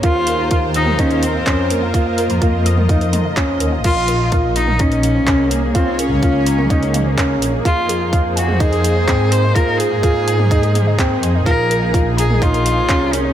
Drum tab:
CC |----------------|----------------|x---------------|----------------|
HH |x-x-x-x-xxx-x-x-|x-xxx-x-xxx-x-x-|x-x-x-x-xxx-x-x-|x-x-x-x-xxx-x-x-|
CP |------------x---|------------x---|------------x---|------------x---|
T2 |-------o--------|-------o--o-----|-------o--------|-------o--o-----|
BD |o---o---o---o---|o---o---o---o---|o---o---o---o---|o---o---o---o---|

CC |----------------|----------------|----------------|
HH |x-x-x-x-xxx-x-x-|x-x-x-x-xxx-x-x-|x-x-x-x-xxx-x-x-|
CP |------------x---|------------x---|------------x---|
T2 |-------o--------|-------o--o-----|-------o--------|
BD |o---o---o---o---|o---o---o---o---|o---o---o---o---|